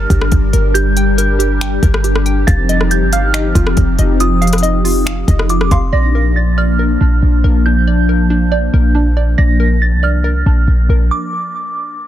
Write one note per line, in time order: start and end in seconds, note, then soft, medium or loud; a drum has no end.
0.00 2.44 G3 medium
0.00 2.44 D4 medium
0.00 5.89 G4 medium
0.00 0.52 A#4 medium
0.00 2.44 A#4 medium
0.00 0.96 G5 loud
0.00 0.28 F6 medium
0.10 0.31 G1 loud
0.10 0.73 G4 medium
0.10 kick loud
0.10 closed hi-hat medium
0.22 cross-stick loud
0.32 0.53 G1 loud
0.32 kick medium
0.32 closed hi-hat medium
0.53 1.79 G1 loud
0.53 1.17 A#4 medium
0.53 closed hi-hat medium
0.74 1.38 G4 medium
0.74 2.43 G6 loud
0.74 closed hi-hat medium
0.97 1.60 G5 loud
0.97 closed hi-hat medium
1.18 1.82 A#4 medium
1.18 closed hi-hat medium
1.39 2.03 G4 medium
1.39 closed hi-hat medium
1.61 2.25 G5 loud
1.61 finger snap loud
1.61 closed hi-hat medium
1.83 2.45 G1 loud
1.83 2.48 A#4 medium
1.83 kick loud
1.83 closed hi-hat medium
1.94 cross-stick loud
2.04 2.48 G4 medium
2.04 closed hi-hat medium
2.16 cross-stick loud
2.26 2.48 G5 loud
2.26 closed hi-hat medium
2.47 3.03 F1 loud
2.47 5.90 F3 medium
2.47 5.90 C4 medium
2.47 5.90 D#4 medium
2.47 3.12 F5 loud
2.47 2.88 A6 loud
2.47 kick loud
2.47 closed hi-hat medium
2.69 3.33 D#5 medium
2.69 closed hi-hat medium
2.81 cross-stick medium
2.91 3.12 G6 medium
2.91 closed hi-hat medium
3.02 3.53 G1 loud
3.13 4.40 F5 loud
3.13 3.73 F6 medium
3.13 closed hi-hat medium
3.34 3.98 D#5 medium
3.34 finger snap loud
3.34 closed hi-hat medium
3.55 3.76 F1 loud
3.55 4.19 F4 medium
3.55 kick loud
3.55 closed hi-hat medium
3.67 cross-stick loud
3.77 3.98 F1 loud
3.77 kick medium
3.77 closed hi-hat medium
3.99 5.24 F1 loud
3.99 4.61 D#5 medium
3.99 closed hi-hat medium
4.20 4.84 F4 medium
4.20 5.46 D#6 medium
4.20 closed hi-hat medium
4.42 5.05 F5 loud
4.42 closed hi-hat soft
4.47 closed hi-hat medium
4.53 cross-stick loud
4.53 closed hi-hat medium
4.58 closed hi-hat medium
4.63 5.27 D#5 medium
4.63 closed hi-hat medium
4.85 5.49 F4 medium
4.85 open hi-hat medium
5.06 5.70 F5 loud
5.06 finger snap loud
5.06 closed hi-hat medium
5.28 5.70 F1 loud
5.28 5.93 D#5 medium
5.28 kick loud
5.28 closed hi-hat medium
5.39 cross-stick loud
5.49 5.93 F4 medium
5.49 5.70 D6 medium
5.49 closed hi-hat medium
5.61 cross-stick loud
5.71 5.92 F1 loud
5.71 5.93 F5 loud
5.71 5.92 C6 medium
5.71 kick medium
5.71 closed hi-hat medium
5.93 6.97 A#1 loud
5.93 11.07 F3 medium
5.93 11.07 A#3 medium
5.93 11.07 D4 medium
5.93 6.57 D5 medium
5.93 6.34 A#6 medium
6.15 6.78 A#4 medium
6.36 6.57 A6 medium
6.58 7.86 D5 loud
6.58 7.19 F6 medium
6.79 7.43 A#4 medium
7.01 7.22 A#1 loud
7.01 7.65 D4 medium
7.23 7.43 A#1 loud
7.44 8.70 A#1 loud
7.44 8.08 A#4 medium
7.66 8.29 D4 medium
7.66 9.34 G6 medium
7.87 8.50 D5 loud
8.09 8.72 A#4 medium
8.30 8.94 D4 medium
8.52 9.16 D5 loud
8.74 9.36 A#1 loud
8.74 9.59 A#4 medium
8.95 10.24 D4 medium
9.17 9.37 D5 loud
9.38 9.94 A#1 loud
9.38 10.02 D5 loud
9.38 9.79 A#6 medium
9.60 10.23 A#4 medium
9.82 10.02 A6 medium
9.92 10.44 C2 loud
10.03 11.32 D5 loud
10.03 10.64 F6 medium
10.24 10.89 A#4 medium
10.46 10.67 A#1 loud
10.46 11.76 D4 medium
10.68 10.88 A#1 loud
10.89 11.10 A#1 loud
10.89 12.07 A#4 medium
11.11 12.07 D6 medium